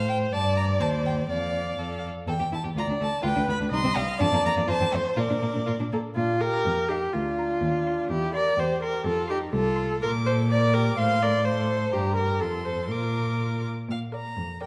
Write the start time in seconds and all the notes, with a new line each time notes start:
Already playing: A2 C5
0.09 G5
0.32 G2 D5 A5
0.56 A#5
0.80 D#2 C5 A5
1.05 G5
1.28 F2 D5 F5
1.77 F2 A4
2.27 E2 A4 G5
2.39 E2 G4
2.52 E2 E4 A5
2.64 E2 G4
2.76 D2 F4 D5 A#5
2.88 D2 D4
3.00 D2 A3 A5
3.23 D2 F4 B4 G5
3.35 D2 D4
3.48 D2 B3 B5
3.60 D2 D4
3.72 C2 D#4 D#5 C6
3.84 C2 C4
3.96 C2 G3 F5
4.19 F2 D4 D5 A5
4.32 F2 A#3
4.45 F2 A#3 A#5
4.57 F2 A#3
4.67 F2 F4 C5 A5
4.80 F2 C4
4.92 F2 A3 C5
5.16 A#2 F4 A#4 D5
5.30 A#2 D4
5.42 A#2 A#3
5.53 A#2 D4
5.66 A#2 F4 A#4
5.80 A#2 D4
5.92 A#2 A#3 A4
6.16 A#2 D4 F4
6.41 G4 A#4 F5
6.65 F2
6.89 D#4 G4 F5
7.13 D2 D4 F4
7.39 A#5
7.62 D#2
7.87 C6
8.10 E2 E4 G4
8.34 A#4 D5 C6
8.57 E2 G4 C5
8.82 G4 A#4 C6
9.04 F2 F4 A4
9.28 D#4 G4 C6
9.53 C2 F4 A4
9.76 C6
10.02 A#2 F4 A#4 D6
10.26 A4 C5
10.50 A#4 D5 D6
10.74 G4 A#4
10.97 A2 C5 F5 C6
11.22 A#4 D5
11.45 A4 C5 C6
11.93 G2 D4 G4 A#5
12.16 G4 A#4
12.40 F2 F4 A4 C6
12.65 A4 C5
12.89 A#2 F4 A#4 D6
13.89 A#2 F5
14.13 A#4 D5 A#5
14.37 F2
14.61 A#4 D5 G5